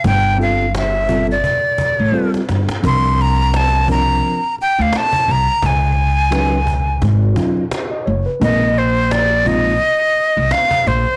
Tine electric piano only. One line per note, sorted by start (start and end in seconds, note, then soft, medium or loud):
0.38 0.64 G3 medium
0.38 0.65 C4 medium
0.38 0.65 F4 medium
0.38 0.65 A4 medium
1.08 1.34 G3 medium
1.08 1.35 C4 medium
1.08 1.35 F4 medium
1.08 1.35 A4 medium
2.12 2.39 G3 medium
2.12 2.39 C4 medium
2.12 2.40 F4 medium
2.12 2.40 A4 medium
2.82 3.81 F3 medium
2.82 3.82 C4 medium
2.82 3.82 D4 medium
2.82 3.82 A#4 medium
3.87 4.39 F3 medium
3.87 4.39 C4 medium
3.87 4.39 D4 medium
3.87 4.39 A#4 medium
6.31 6.57 F#3 medium
6.31 6.58 C#4 medium
6.31 6.58 D#4 medium
6.31 6.58 B4 medium
7.35 7.62 F#3 medium
7.35 7.62 C#4 medium
7.35 7.63 D#4 medium
7.35 7.63 F4 medium
7.91 8.06 D#5 medium
8.06 8.25 C#5 medium
8.26 8.59 B4 medium
8.40 8.67 G#3 medium
8.40 8.67 C4 medium
8.40 8.67 D#4 medium
8.40 8.68 A#4 medium
9.45 9.71 G#3 medium
9.45 9.72 C4 medium
9.45 9.72 D#4 medium
9.45 9.72 F4 medium